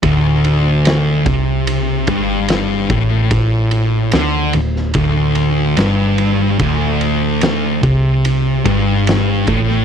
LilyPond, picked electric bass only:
\new Staff \with { instrumentName = "Picked electric bass" } { \clef bass \time 4/4 \key c \mixolydian \tempo 4 = 73 d,,4. c,4 g,,4 a,,8~ | a,,4 d,8 d,,8 d,,4 g,,4 | d,,4. c,4 g,,4 a,,8 | }